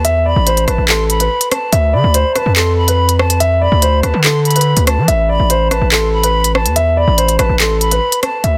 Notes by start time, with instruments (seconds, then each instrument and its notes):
Already playing: 808-style bass E2
0.05 grand piano E5, closed hi-hat
0.26 grand piano D5, flute B5
0.36 808-style bass A1
0.47 grand piano C5, closed hi-hat
0.57 closed hi-hat
0.67 808-style bass A1, grand piano B4, flute A5, cross-stick, closed hi-hat
0.78 808-style bass A1
0.89 grand piano A4, flute C6, clap, closed hi-hat
1.09 flute B5, closed hi-hat
1.20 grand piano B4, closed hi-hat
1.41 closed hi-hat
1.52 flute A5, cross-stick, closed hi-hat
1.72 808-style bass D2, grand piano E5, closed hi-hat
1.93 808-style bass D3, grand piano D5, flute B5
2.04 808-style bass D2
2.14 grand piano C5, closed hi-hat
2.36 grand piano B4, flute A5, cross-stick, closed hi-hat
2.46 808-style bass F2
2.56 grand piano A4, flute C6, clap, closed hi-hat
2.77 flute B5
2.88 grand piano B4, closed hi-hat
3.09 closed hi-hat
3.19 flute A5, cross-stick
3.30 closed hi-hat
3.40 grand piano E5, closed hi-hat
3.61 grand piano D5, flute B5
3.72 808-style bass D2
3.82 grand piano C5, closed hi-hat
4.03 808-style bass D2, grand piano B4, flute A5, cross-stick, closed hi-hat
4.14 808-style bass D3
4.24 grand piano A4, flute C6, clap, closed hi-hat
4.45 flute B5, closed hi-hat
4.51 closed hi-hat
4.56 grand piano B4, closed hi-hat
4.61 closed hi-hat
4.77 808-style bass D2, closed hi-hat
4.87 flute A5, cross-stick, closed hi-hat
4.98 808-style bass F3
5.08 808-style bass A1, grand piano E5, closed hi-hat
5.29 grand piano D5, flute B5
5.40 808-style bass A1
5.50 grand piano C5, closed hi-hat
5.71 grand piano B4, flute A5, cross-stick, closed hi-hat
5.81 808-style bass A1
5.92 grand piano A4, flute C6, clap, closed hi-hat
6.13 flute B5
6.23 grand piano B4, closed hi-hat
6.44 closed hi-hat
6.55 flute A5, cross-stick
6.66 808-style bass E2, closed hi-hat
6.76 grand piano E5, closed hi-hat
6.97 grand piano D5, flute B5
7.08 808-style bass A1
7.18 grand piano C5, closed hi-hat
7.28 closed hi-hat
7.39 808-style bass A1, grand piano B4, flute A5, cross-stick, closed hi-hat
7.49 808-style bass A1
7.60 grand piano A4, flute C6, clap, closed hi-hat
7.81 flute B5, closed hi-hat
7.91 grand piano B4, closed hi-hat
8.12 closed hi-hat
8.23 flute A5, cross-stick, closed hi-hat
8.44 808-style bass D2, grand piano E5, closed hi-hat